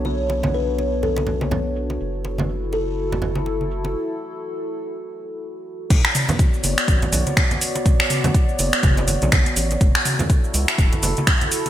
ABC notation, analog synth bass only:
X:1
M:4/4
L:1/16
Q:"Swing 16ths" 1/4=123
K:Bdor
V:1 name="Analog synth bass" clef=bass
B,,,16 | F,,,16 | z16 | B,,, z4 z F,,, z A,,, z B,,, z4 z |
z6 F,,, z F,,,3 B,,, B,,, z A,,,2 | F,,, z4 z C,, z E,,, z F,,, z4 z |]